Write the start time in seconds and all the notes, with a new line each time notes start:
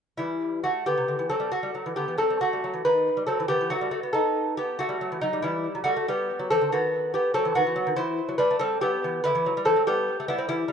0.17 E3 G3 E4
0.64 A3 F#4
0.86 D3 B3 G4
0.98 C3
1.08 D3
1.19 E3
1.29 F#3 C4 A4
1.40 G3
1.52 A3 F#4
1.63 G3
1.75 F#3
1.86 E3
1.96 D3 B3 G4
2.08 E3
2.18 F#3 C4 A4
2.30 G3
2.41 A3 F#4
2.53 G3
2.64 F#3
2.74 E3
2.85 D#3 D#4 B4
3.17 G3
3.26 F#3 C4 A4
3.40 E3
3.48 D#3 B3 G4
3.61 E3
3.70 F#3 A3 F#4
3.81 G3
3.91 A3
4.03 B3
4.13 D#4 A4
4.57 B3 G4
4.79 A3 F#4
4.89 G3
5.01 F#3
5.12 E3
5.21 F#3 D#4
5.33 G3
5.42 E3 G3 E4
5.75 F#3
5.84 G3 A3 F#4
5.96 A3
6.08 G3 B3 G4
6.39 F#3
6.50 E3 C4 A4
6.61 D3
6.72 D#3 B3 F#4
7.14 B3 G4
7.34 F#3 C4 A4
7.45 E3
7.55 D#3 B3 F#4
7.67 E3
7.76 F#3
7.87 D#3
7.96 E3 E4 C5
8.29 F#3
8.38 G3 D4 B4
8.51 A3
8.59 G3 C4 A4
8.81 F#3 B3 G4
9.04 E3
9.24 D3 E4 B4
9.35 E3
9.46 F#3
9.57 G3
9.65 E3 C4 A4
9.76 F#3
9.87 G3 B3 G4
10.20 A3
10.28 G3 B3 E4
10.38 C4
10.49 E3 G3 E4
10.68 G3